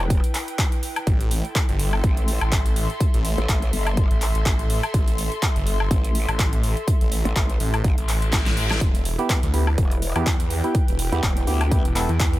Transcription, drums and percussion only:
0.10 kick loud
0.10 closed hi-hat medium
0.24 closed hi-hat medium
0.34 clap medium
0.34 open hi-hat loud
0.48 closed hi-hat soft
0.59 kick loud
0.59 clap loud
0.59 closed hi-hat medium
0.72 closed hi-hat medium
0.83 open hi-hat loud
0.96 closed hi-hat soft
0.96 high woodblock medium
1.07 kick loud
1.07 closed hi-hat medium
1.21 closed hi-hat medium
1.31 open hi-hat loud
1.45 closed hi-hat soft
1.55 kick loud
1.55 clap loud
1.55 closed hi-hat medium
1.69 closed hi-hat medium
1.79 open hi-hat loud
1.93 high woodblock medium
2.04 kick loud
2.04 closed hi-hat medium
2.17 closed hi-hat medium
2.28 open hi-hat loud
2.41 closed hi-hat soft
2.41 high woodblock medium
2.52 kick loud
2.52 clap loud
2.52 closed hi-hat medium
2.66 closed hi-hat medium
2.76 open hi-hat medium
2.90 closed hi-hat soft
3.00 kick loud
3.00 closed hi-hat medium
3.14 closed hi-hat medium
3.25 open hi-hat loud
3.38 closed hi-hat soft
3.49 kick loud
3.49 clap loud
3.49 closed hi-hat medium
3.62 closed hi-hat medium
3.73 open hi-hat medium
3.87 closed hi-hat soft
3.87 high woodblock medium
3.97 kick loud
3.97 closed hi-hat medium
4.11 closed hi-hat medium
4.21 clap medium
4.21 open hi-hat loud
4.35 closed hi-hat soft
4.46 kick loud
4.46 clap loud
4.46 closed hi-hat medium
4.59 closed hi-hat medium
4.70 open hi-hat medium
4.83 closed hi-hat soft
4.83 high woodblock medium
4.94 kick loud
4.94 closed hi-hat medium
5.08 closed hi-hat medium
5.18 open hi-hat loud
5.32 closed hi-hat soft
5.42 kick loud
5.42 clap loud
5.42 closed hi-hat medium
5.56 closed hi-hat medium
5.67 open hi-hat medium
5.80 high woodblock medium
5.91 kick loud
5.91 closed hi-hat medium
6.04 closed hi-hat medium
6.15 open hi-hat loud
6.29 closed hi-hat soft
6.29 high woodblock medium
6.39 kick loud
6.39 clap loud
6.39 closed hi-hat medium
6.53 closed hi-hat medium
6.63 open hi-hat medium
6.77 closed hi-hat soft
6.88 kick loud
6.88 closed hi-hat medium
7.01 closed hi-hat medium
7.12 open hi-hat loud
7.25 closed hi-hat soft
7.36 kick loud
7.36 clap loud
7.36 closed hi-hat medium
7.50 closed hi-hat medium
7.60 open hi-hat medium
7.74 closed hi-hat soft
7.74 high woodblock medium
7.84 kick loud
7.84 closed hi-hat medium
7.98 closed hi-hat medium
8.09 clap medium
8.09 open hi-hat loud
8.22 closed hi-hat soft
8.33 kick loud
8.33 snare medium
8.33 clap loud
8.33 closed hi-hat medium
8.46 snare medium
8.46 closed hi-hat medium
8.57 open hi-hat medium
8.71 snare medium
8.71 closed hi-hat soft
8.71 high woodblock medium
8.81 kick loud
8.81 closed hi-hat medium
8.95 closed hi-hat medium
9.05 open hi-hat loud
9.19 closed hi-hat soft
9.30 kick loud
9.30 clap loud
9.30 closed hi-hat medium
9.43 closed hi-hat medium
9.54 open hi-hat medium
9.67 high woodblock medium
9.78 kick loud
9.78 closed hi-hat medium
9.91 closed hi-hat medium
10.02 open hi-hat loud
10.16 closed hi-hat soft
10.16 high woodblock medium
10.26 kick loud
10.26 clap loud
10.26 closed hi-hat medium
10.40 closed hi-hat medium
10.50 open hi-hat medium
10.64 closed hi-hat soft
10.75 kick loud
10.75 closed hi-hat medium
10.88 closed hi-hat medium
10.99 open hi-hat loud
11.13 closed hi-hat soft
11.23 kick loud
11.23 clap loud
11.23 closed hi-hat medium
11.37 closed hi-hat medium
11.47 open hi-hat loud
11.61 closed hi-hat soft
11.61 high woodblock medium
11.71 kick loud
11.71 closed hi-hat medium
11.85 closed hi-hat medium
11.96 clap medium
11.96 open hi-hat loud
12.09 closed hi-hat soft
12.20 kick loud
12.20 clap loud
12.20 closed hi-hat medium
12.33 closed hi-hat medium

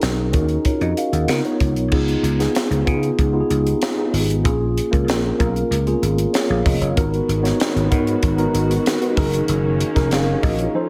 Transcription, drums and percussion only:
0.01 snare loud
0.01 closed hi-hat medium
0.33 kick medium
0.33 closed hi-hat medium
0.49 closed hi-hat soft
0.65 kick medium
0.65 closed hi-hat medium
0.81 closed hi-hat soft
0.97 closed hi-hat medium
1.13 closed hi-hat soft
1.28 snare medium
1.28 closed hi-hat medium
1.45 closed hi-hat soft
1.60 kick medium
1.60 closed hi-hat medium
1.76 closed hi-hat soft
1.92 kick loud
1.92 crash medium
2.08 closed hi-hat soft
2.24 closed hi-hat medium
2.40 snare soft
2.40 closed hi-hat soft
2.55 snare medium
2.55 closed hi-hat medium
2.72 closed hi-hat soft
2.87 kick loud
2.87 closed hi-hat medium
3.03 closed hi-hat soft
3.19 kick loud
3.19 closed hi-hat medium
3.50 closed hi-hat medium
3.67 closed hi-hat soft
3.82 snare loud
3.82 closed hi-hat medium
4.14 open hi-hat medium
4.30 closed hi-hat soft
4.45 kick loud
4.45 closed hi-hat medium
4.78 closed hi-hat medium
4.93 kick medium
4.93 closed hi-hat soft
5.08 snare loud
5.08 closed hi-hat medium
5.40 kick loud
5.40 closed hi-hat medium
5.56 closed hi-hat soft
5.72 closed hi-hat medium
5.87 closed hi-hat soft
6.03 closed hi-hat medium
6.18 closed hi-hat soft
6.34 snare medium
6.34 closed hi-hat medium
6.66 kick loud
6.66 open hi-hat medium
6.82 closed hi-hat soft
6.97 kick loud
6.97 closed hi-hat medium
7.14 closed hi-hat soft
7.29 closed hi-hat medium
7.45 snare soft
7.45 closed hi-hat soft
7.60 snare loud
7.60 closed hi-hat medium
7.77 closed hi-hat soft
7.92 kick loud
7.92 closed hi-hat medium
8.07 closed hi-hat soft
8.23 kick loud
8.23 closed hi-hat medium
8.38 closed hi-hat soft
8.55 closed hi-hat medium
8.71 closed hi-hat medium
8.86 snare loud
8.86 closed hi-hat medium
9.02 closed hi-hat soft
9.17 kick loud
9.17 open hi-hat medium
9.33 closed hi-hat soft
9.48 closed hi-hat medium
9.81 closed hi-hat medium
9.96 kick medium
9.96 snare soft
9.96 closed hi-hat soft
10.11 snare loud
10.11 closed hi-hat medium
10.43 kick loud
10.43 open hi-hat medium
10.59 closed hi-hat soft

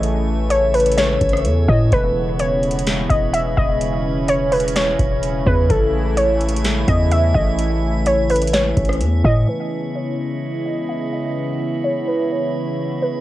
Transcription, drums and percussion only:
0.03 closed hi-hat medium
0.50 closed hi-hat medium
0.74 closed hi-hat soft
0.74 open hi-hat medium
0.80 closed hi-hat medium
0.86 closed hi-hat medium
0.92 closed hi-hat medium
0.98 snare loud
0.98 closed hi-hat medium
1.21 kick loud
1.21 closed hi-hat medium
1.29 closed hi-hat medium
1.33 cross-stick loud
1.33 closed hi-hat medium
1.45 closed hi-hat medium
1.68 kick loud
1.92 kick loud
1.92 closed hi-hat medium
2.39 closed hi-hat medium
2.63 closed hi-hat soft
2.71 closed hi-hat medium
2.79 closed hi-hat medium
2.87 snare loud
2.87 closed hi-hat medium
3.10 kick loud
3.10 closed hi-hat medium
3.34 closed hi-hat medium
3.58 kick loud
3.81 closed hi-hat medium
4.28 closed hi-hat medium
4.52 closed hi-hat soft
4.52 open hi-hat medium
4.60 closed hi-hat medium
4.68 closed hi-hat medium
4.76 snare loud
4.76 closed hi-hat medium
4.99 kick medium
4.99 closed hi-hat medium
5.23 closed hi-hat medium
5.46 kick loud
5.70 kick loud
5.70 closed hi-hat medium
6.17 closed hi-hat medium
6.41 closed hi-hat soft
6.49 closed hi-hat medium
6.56 closed hi-hat medium
6.65 snare loud
6.65 closed hi-hat medium
6.88 kick medium
6.88 closed hi-hat medium
7.12 closed hi-hat medium
7.35 kick loud
7.59 closed hi-hat medium
8.06 closed hi-hat medium
8.30 closed hi-hat soft
8.30 open hi-hat medium
8.36 closed hi-hat medium
8.42 closed hi-hat medium
8.47 closed hi-hat medium
8.54 snare loud
8.54 closed hi-hat medium
8.77 kick medium
8.77 closed hi-hat medium
8.85 closed hi-hat medium
8.89 cross-stick medium
8.89 closed hi-hat medium
9.01 closed hi-hat medium
9.24 kick loud

